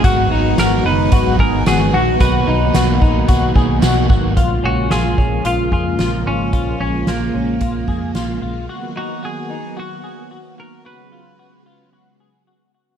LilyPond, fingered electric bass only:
\new Staff \with { instrumentName = "Fingered electric bass" } { \clef bass \time 4/4 \key ais \phrygian \tempo 4 = 111 gis,,8 gis,,8 gis,,8 fis,,8 gis,,8 gis,,8 gis,,8 ais,,8 | b,,8 b,,8 b,,8 ais,,8 b,,8 b,,8 b,,8 gis,,8 | ais,,8 ais,,8 ais,,8 ais,,8 ais,,8 eis,8 ais,,8 gis,,8 | ais,,8 ais,,8 ais,,8 ais,,8 ais,,8 eis,8 ais,,8 ais,,8 |
r1 | r1 | }